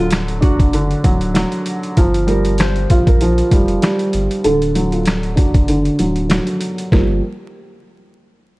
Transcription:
Already playing: D1 D3 F#3 F4
0.11 snare, closed hi-hat
0.28 closed hi-hat
0.41 F#1 D4 F#4, kick, closed hi-hat
0.60 kick, closed hi-hat
0.73 D3, closed hi-hat
0.91 closed hi-hat
1.04 D1 F#3, kick, closed hi-hat
1.21 closed hi-hat
1.34 F#3, snare, closed hi-hat
1.52 closed hi-hat
1.66 closed hi-hat
1.83 closed hi-hat
1.97 G1 F3, kick, closed hi-hat
2.14 closed hi-hat
2.27 G3 A#4, closed hi-hat
2.45 closed hi-hat
2.58 C5, snare, closed hi-hat
2.76 closed hi-hat
2.90 A#1 F4, kick, closed hi-hat
3.07 A#4, kick, closed hi-hat
3.21 F3, closed hi-hat
3.38 closed hi-hat
3.51 F1 G3, kick, closed hi-hat
3.68 closed hi-hat
3.82 G3, snare, closed hi-hat
3.99 closed hi-hat
4.13 G1, closed hi-hat
4.31 closed hi-hat
4.44 D1 D3 A4, closed hi-hat
4.62 closed hi-hat
4.75 F#3, closed hi-hat
4.92 F4, closed hi-hat
5.05 snare, closed hi-hat
5.23 closed hi-hat
5.36 F#1 D4 F#4, kick, closed hi-hat
5.54 kick, closed hi-hat
5.68 D3, closed hi-hat
5.85 closed hi-hat
5.99 D1 F#3, closed hi-hat
6.16 closed hi-hat
6.29 F#3, snare, closed hi-hat
6.47 closed hi-hat
6.61 closed hi-hat
6.78 closed hi-hat
6.92 G1 F3 G3 A#3 G4, kick, snare

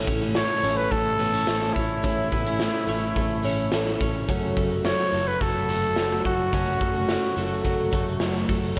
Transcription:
Already playing: A2 E3 A3 C#4 E4 A4
0.07 A1 C#4, kick, closed hi-hat
0.20 A3 C#4 E4 A4
0.35 A3 C#5, snare, closed hi-hat
0.62 A1 A3 C#4 E4 A4, closed hi-hat
0.77 B4
0.92 A1 A3 A4, kick, closed hi-hat
1.18 A1 A3 B3 C#4 E4 A4, closed hi-hat
1.34 C#4
1.46 A1 A3 C#4, snare, closed hi-hat
1.60 A3 C#4 E4 A4
1.73 A1 C#4 E4, kick, closed hi-hat
2.02 A1 A2 E3 A3 C#4 E4 A4, kick, closed hi-hat
2.32 A1 B3, kick, closed hi-hat
2.44 A3 C#4 E4 A4
2.60 A3, snare, closed hi-hat
2.87 A1 A3 C#4 E4 A4, closed hi-hat
3.16 A1 A3, kick, closed hi-hat
3.43 A1 A3 C#4 E4 A4, closed hi-hat
3.72 A1 A3 C#4 E4 A4, snare, closed hi-hat
3.85 A3 C#4 E4 A4
4.01 A1 C#4, kick, closed hi-hat
4.28 F#1 F#2 C#3 F#3 A3 C#4 F#4 A4, kick, closed hi-hat
4.57 F#1 A3, kick, closed hi-hat
4.69 F#3 A3 F#4 A4
4.85 F#3 C#5, snare, closed hi-hat
5.12 F#1 F#3 A3 F#4 A4, closed hi-hat
5.28 B4
5.41 F#1 F#3 A4, kick, closed hi-hat
5.68 F#1 F#3 A3 F#4 A4, closed hi-hat
5.96 F#1 F#3 A3 F#4 A4, snare, closed hi-hat
6.10 F#3 A3 F#4 A4
6.25 F#1 A3 F#4, kick, closed hi-hat
6.52 F#1 F#2 C#3 F#3 A3 C#4 F#4 A4, kick, closed hi-hat
6.81 F#1 A3, kick, closed hi-hat
6.94 F#3 A3 F#4 A4
7.09 F#3, snare, closed hi-hat
7.36 F#1 F#3 A3 F#4 A4, closed hi-hat
7.64 F#1 F#3, kick, closed hi-hat
7.91 F#1 F#3 A3 F#4 A4, kick, closed hi-hat
8.20 F#1 F#3 A3 F#4 A4, snare, closed hi-hat
8.34 F#3 A3 F#4 A4
8.49 F#1 A3, kick, open hi-hat
8.76 C#3

